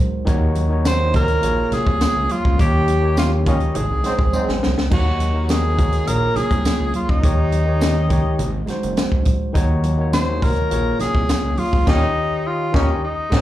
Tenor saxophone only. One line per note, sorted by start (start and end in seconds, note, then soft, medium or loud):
0.87 1.13 C5 loud
1.16 1.75 A#4 loud
1.73 2.33 G#4 loud
2.31 2.60 F4 medium
2.60 3.14 G4 loud
3.18 3.31 F4 medium
3.47 3.77 D#4 medium
3.76 4.63 G#4 medium
4.93 5.52 F#4 loud
5.50 6.09 G#4 loud
6.08 6.38 A#4 loud
6.36 6.94 G#4 loud
6.95 7.11 F4 medium
7.10 8.83 D#4 loud
10.13 10.44 C5 loud
10.43 11.00 A#4 loud
11.01 11.60 G#4 loud
11.59 11.88 F4 medium
11.88 12.48 D#4 loud
12.47 12.77 F4 medium
12.75 13.03 D#4 medium
13.04 13.41 D#4 medium